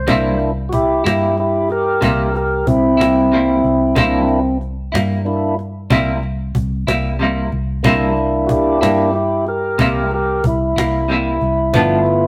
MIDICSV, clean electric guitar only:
0, 0, Header, 1, 2, 480
1, 0, Start_track
1, 0, Tempo, 647948
1, 60, Time_signature, 12, 3, 24, 8
1, 9090, End_track
2, 0, Start_track
2, 0, Title_t, "Clean electric guitar"
2, 0, Program_c, 0, 27
2, 53, Note_on_c, 0, 48, 67
2, 60, Note_on_c, 0, 55, 73
2, 65, Note_on_c, 0, 58, 74
2, 72, Note_on_c, 0, 64, 90
2, 200, Note_off_c, 0, 48, 0
2, 204, Note_off_c, 0, 55, 0
2, 207, Note_off_c, 0, 58, 0
2, 210, Note_off_c, 0, 64, 0
2, 771, Note_on_c, 0, 64, 44
2, 782, Note_on_c, 0, 58, 43
2, 793, Note_on_c, 0, 55, 38
2, 920, Note_off_c, 0, 64, 0
2, 925, Note_off_c, 0, 58, 0
2, 930, Note_off_c, 0, 55, 0
2, 1490, Note_on_c, 0, 48, 66
2, 1499, Note_on_c, 0, 55, 63
2, 1502, Note_on_c, 0, 58, 61
2, 1509, Note_on_c, 0, 64, 65
2, 1639, Note_off_c, 0, 48, 0
2, 1644, Note_off_c, 0, 55, 0
2, 1645, Note_off_c, 0, 58, 0
2, 1648, Note_off_c, 0, 64, 0
2, 2202, Note_on_c, 0, 64, 45
2, 2219, Note_on_c, 0, 58, 40
2, 2230, Note_on_c, 0, 55, 36
2, 2355, Note_off_c, 0, 64, 0
2, 2364, Note_off_c, 0, 58, 0
2, 2369, Note_off_c, 0, 55, 0
2, 2458, Note_on_c, 0, 48, 49
2, 2469, Note_on_c, 0, 55, 54
2, 2476, Note_on_c, 0, 58, 53
2, 2477, Note_on_c, 0, 64, 53
2, 2603, Note_off_c, 0, 48, 0
2, 2609, Note_off_c, 0, 55, 0
2, 2612, Note_off_c, 0, 58, 0
2, 2613, Note_off_c, 0, 64, 0
2, 2931, Note_on_c, 0, 48, 77
2, 2940, Note_on_c, 0, 55, 78
2, 2944, Note_on_c, 0, 58, 82
2, 2947, Note_on_c, 0, 64, 84
2, 3079, Note_off_c, 0, 48, 0
2, 3084, Note_off_c, 0, 55, 0
2, 3086, Note_off_c, 0, 58, 0
2, 3087, Note_off_c, 0, 64, 0
2, 3645, Note_on_c, 0, 64, 51
2, 3658, Note_on_c, 0, 58, 50
2, 3670, Note_on_c, 0, 55, 42
2, 3797, Note_off_c, 0, 64, 0
2, 3803, Note_off_c, 0, 58, 0
2, 3809, Note_off_c, 0, 55, 0
2, 4373, Note_on_c, 0, 48, 75
2, 4376, Note_on_c, 0, 55, 77
2, 4384, Note_on_c, 0, 58, 72
2, 4387, Note_on_c, 0, 64, 91
2, 4521, Note_off_c, 0, 48, 0
2, 4522, Note_off_c, 0, 55, 0
2, 4526, Note_off_c, 0, 58, 0
2, 4528, Note_off_c, 0, 64, 0
2, 5091, Note_on_c, 0, 64, 55
2, 5104, Note_on_c, 0, 58, 46
2, 5116, Note_on_c, 0, 55, 42
2, 5240, Note_off_c, 0, 64, 0
2, 5246, Note_off_c, 0, 58, 0
2, 5252, Note_off_c, 0, 55, 0
2, 5329, Note_on_c, 0, 48, 53
2, 5341, Note_on_c, 0, 55, 60
2, 5349, Note_on_c, 0, 58, 55
2, 5354, Note_on_c, 0, 64, 62
2, 5479, Note_off_c, 0, 48, 0
2, 5484, Note_off_c, 0, 55, 0
2, 5489, Note_off_c, 0, 58, 0
2, 5491, Note_off_c, 0, 64, 0
2, 5808, Note_on_c, 0, 48, 77
2, 5814, Note_on_c, 0, 55, 76
2, 5816, Note_on_c, 0, 58, 91
2, 5826, Note_on_c, 0, 64, 79
2, 5958, Note_off_c, 0, 48, 0
2, 5961, Note_off_c, 0, 55, 0
2, 5962, Note_off_c, 0, 58, 0
2, 5967, Note_off_c, 0, 64, 0
2, 6527, Note_on_c, 0, 64, 48
2, 6536, Note_on_c, 0, 58, 44
2, 6545, Note_on_c, 0, 55, 37
2, 6677, Note_off_c, 0, 64, 0
2, 6682, Note_off_c, 0, 58, 0
2, 6687, Note_off_c, 0, 55, 0
2, 7248, Note_on_c, 0, 48, 58
2, 7253, Note_on_c, 0, 55, 69
2, 7261, Note_on_c, 0, 58, 68
2, 7265, Note_on_c, 0, 64, 67
2, 7398, Note_off_c, 0, 48, 0
2, 7401, Note_off_c, 0, 55, 0
2, 7405, Note_off_c, 0, 58, 0
2, 7407, Note_off_c, 0, 64, 0
2, 7974, Note_on_c, 0, 64, 42
2, 7986, Note_on_c, 0, 58, 41
2, 7997, Note_on_c, 0, 55, 35
2, 8121, Note_off_c, 0, 64, 0
2, 8127, Note_off_c, 0, 58, 0
2, 8132, Note_off_c, 0, 55, 0
2, 8212, Note_on_c, 0, 48, 50
2, 8220, Note_on_c, 0, 55, 46
2, 8231, Note_on_c, 0, 58, 58
2, 8237, Note_on_c, 0, 64, 57
2, 8360, Note_off_c, 0, 48, 0
2, 8364, Note_off_c, 0, 55, 0
2, 8369, Note_off_c, 0, 58, 0
2, 8372, Note_off_c, 0, 64, 0
2, 8695, Note_on_c, 0, 43, 68
2, 8700, Note_on_c, 0, 53, 72
2, 8706, Note_on_c, 0, 59, 79
2, 8712, Note_on_c, 0, 62, 79
2, 8841, Note_off_c, 0, 43, 0
2, 8844, Note_off_c, 0, 53, 0
2, 8847, Note_off_c, 0, 59, 0
2, 8850, Note_off_c, 0, 62, 0
2, 9090, End_track
0, 0, End_of_file